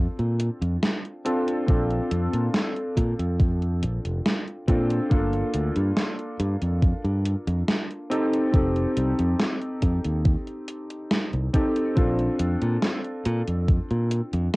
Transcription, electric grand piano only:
Already playing: C4 D4 F4 A4
1.25 C4 D4 F4 A4
1.66 C4 D4 F4 A4
4.68 C4 D4 F4 A4
5.10 A#3 D4 F4 A4
8.10 C4 D#4 G4 A4
8.52 C4 D#4 G4 A4
11.53 C4 D#4 G4 A4
11.95 C4 D4 F4 A4

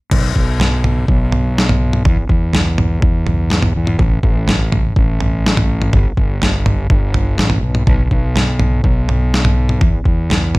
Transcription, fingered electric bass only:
0.12 B1
0.36 B1
1.09 B1
2.05 E2
2.30 E2
3.02 E2
3.76 E2
3.99 A1
4.23 A1
4.97 A1
5.94 G1
6.17 G1
6.91 G1
7.38 A1
7.63 B1
7.87 B1
8.12 B1
8.84 B1
9.82 E2
10.06 E2

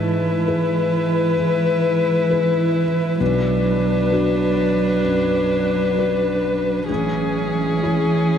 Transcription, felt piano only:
Already playing: G#2
0.47 E4 G#4 B4
1.38 G#3
2.30 E4 G#4 B4
3.20 B1
4.12 D4 F#4 B4
5.06 F#2
5.98 D4 F#4 B4
6.90 A1
7.83 E4 G#4 C#5

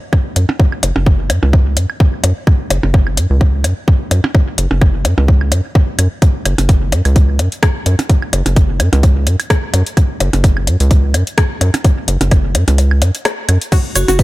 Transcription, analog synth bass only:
0.36 F#2
0.83 F#1
0.96 F#1
1.30 F#2
1.43 C#2
1.77 F#2
2.24 F#2
2.70 F#1
2.83 F#1
3.17 F#2
3.30 C#2
3.64 F#2
4.11 F#2
4.58 F#1
4.71 F#1
5.05 F#2
5.18 C#2
5.52 F#2
5.99 F#2
6.45 F#1
6.58 F#1
6.92 F#2
7.05 C#2
7.39 F#2
7.86 F#2
8.33 F#1
8.46 F#1
8.80 F#2
8.93 C#2
9.27 F#2
9.74 F#2
10.21 F#1
10.33 F#1
10.67 F#2
10.80 C#2
11.14 F#2
11.61 F#2
12.08 F#1
12.21 F#1
12.55 F#2
12.68 C#2
13.02 F#2
13.49 F#2
13.96 F#1
14.08 F#1

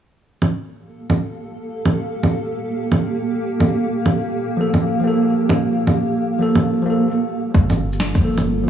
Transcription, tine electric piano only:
4.57 F3 A#3 A4
5.00 F3
5.04 A#3 A4
6.39 F3 A#3 A4
6.82 F3 A#3
6.90 A4
8.21 F3 A#3
8.25 A4
8.64 F3

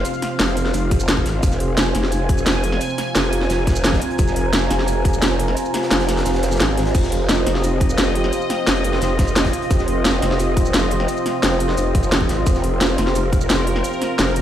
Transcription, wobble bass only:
0.40 F1
0.74 F1
1.26 G#1
1.43 F1
1.78 F1
1.95 F1
3.15 F1
3.50 F1
4.19 F1
4.53 F1
4.71 F1
5.91 F1
6.26 F1
6.60 G#1
6.95 F1
7.29 F1
7.47 F1
8.67 F1
9.02 F1
9.71 F1
10.05 F1
10.22 F1
11.43 F1
11.78 F1
12.29 G#1
12.47 F1
12.81 F1
12.98 F1
14.19 F1

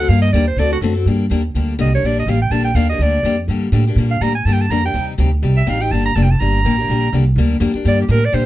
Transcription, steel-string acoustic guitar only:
0.00 C4 F#4
0.10 D3 G3 A#3 D4 G4
0.34 D3 G3 A#3 D4 G4
0.58 D3 A3 C4 F#4 A4
0.82 D3 A3 C4 F#4 A4
0.95 C4 F#4 A4
1.06 D3 G3 A#3 D4 G4
1.30 D3 G3 A#3 D4 G4
1.55 D3 G3 A#3 D4 G4
1.79 D3 G3 A#3 D4 G4
1.95 A#3 D4
2.04 D3 G3 A#3 D4 G4
2.28 D3 G3 A#3 D4 G4
2.51 D3 G3 A#3 D4 G4
2.75 D3 G3 A#3 D4 G4
2.90 A#3 D4 G4
3.01 D3 G3 A#3 D4 G4
3.25 D3 G3 A#3 D4 G4
3.49 D3 G3 A#3 D4 G4
3.72 D3 G3 A#3 D4 G4
3.87 A#3 D4 G4
3.98 D3 G3 A#3 D4 G4
4.21 D3 G3 A#3 D4 G4
4.46 D3 G3 A#3 D4 G4
4.71 D3 G3 A#3 D4 G4
4.84 A#3 D4 G4
4.94 C3 G3 C4 D#4 G4
5.18 C3 G3 C4 D#4 G4
5.43 C3 G3 C4 D#4 G4
5.67 C3 G3 C4 D#4 G4
5.80 C4 D#4 G4
5.93 D3 G3 A#3 D4 G4
6.16 D3 G3 A#3 D4 G4
6.40 D3 G3 A#3 D4 G4
6.64 D3 G3 A#3 D4 G4
6.78 A#3 D4 G4
6.89 D3 G3 A#3 D4 G4
7.13 D3 G3 A#3 D4 G4
7.38 D3 G3 A#3 D4 G4
7.60 D3 G3 A#3 D4 G4
7.74 A#3 D4 G4
7.85 D3 G3 A#3 D4 G4
8.08 D3 G3 A#3 D4 G4
8.32 D3 G3 A#3 D4 G4

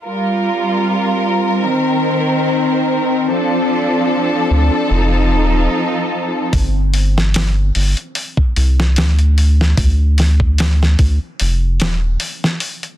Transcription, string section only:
0.05 G3 F4 A#4
1.65 D#3 C4
3.28 F3 D4 A4
4.89 F3 D#4

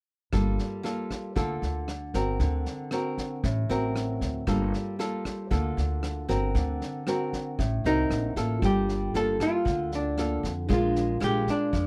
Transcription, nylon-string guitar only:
0.33 G3 A#3 F4 A4
0.83 A#3 F4 A4
1.36 D3 A#3 F4 A4
2.14 C4 F#4 A#4
2.41 D3
2.92 C4 F#4 A#4
3.44 A2
3.69 C4 F#4 A#4
4.47 G3 A#3 F4 A4
4.99 A#3 F4 A4
5.51 D3 A#3 F4 A4
6.29 C4 F#4 A#4
6.55 D3
7.07 C4 F#4 A#4
7.59 A2
7.85 C4 F#4 A#4
8.36 A#3 F4 A4
8.63 G3
9.15 A#3 F4 A4
9.40 A#3 F4 A4
9.65 D3
10.18 A#3 F4 A4
10.69 A#2 G#3 D4 F4
11.20 G#3 D4 F4
11.73 F3

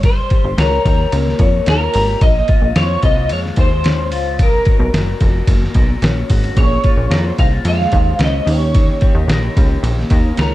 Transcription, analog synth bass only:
Already playing: G1
0.44 G1
0.58 C#2
0.85 D#2
1.13 C#2
1.39 F2
1.67 D#2
1.95 G#1
2.21 A#1
2.62 A#1
2.76 F2
3.03 C2
3.31 F2
3.57 D#2
4.12 C#2
4.39 B1
4.79 B1
4.93 F#1
5.21 F1
5.48 F#1
5.75 B1
6.02 A#1
6.30 G#1
6.57 A#1
6.97 A#1
7.10 F2
7.39 C2
7.65 F2
7.93 D#2
8.19 C#2
8.47 D#2
9.15 D#2
9.27 A#1
9.57 C#2
9.83 A#1
10.11 D#2
10.38 C#2

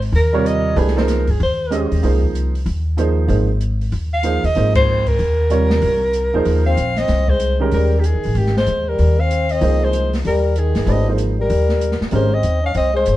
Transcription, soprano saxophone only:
0.15 A#4
0.46 D#5
0.78 G#4
0.97 A#4
1.30 G#4
1.43 C5
4.14 F5
4.45 D#5
4.75 C5
5.08 A#4
6.66 F5
6.98 D#5
7.30 C5
7.73 A#4
7.99 G4
8.05 G#4
8.38 G4
8.57 C5
8.88 A#4
9.20 F5
9.51 D#5
9.84 C5
10.27 A#4
10.58 G#4
10.91 D#5
11.41 A#4
12.15 C5
12.34 D#5
12.65 F5
12.77 D#5
12.96 C5

